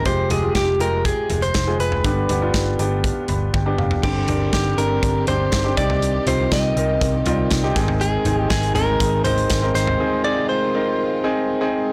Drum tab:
CC |----------------|----------------|x---------------|----------------|
HH |x-x-x-x-x-xxx-x-|x-x-x-x-x-x-----|--x-x-x-x-x-x-x-|x-x-x-x-x-x-x-x-|
SD |----o-------o---|----o-----------|----o-------o---|----o-------o-o-|
T1 |----------------|------------o---|----------------|----------------|
T2 |----------------|--------------o-|----------------|----------------|
FT |--o-------o----o|--o-------o----o|--o-------o----o|--o-------o----o|
BD |o---o---o---o---|o---o---o---o---|o---o---o---o-o-|----o---o---o-o-|

CC |----------------|----------------|
HH |x-x-xxx-x-xxx-x-|----------------|
SD |----o-------o-o-|----------------|
T1 |----------------|----------------|
T2 |----------------|----------------|
FT |--o---o---o----o|----------------|
BD |----o---o---o---|----------------|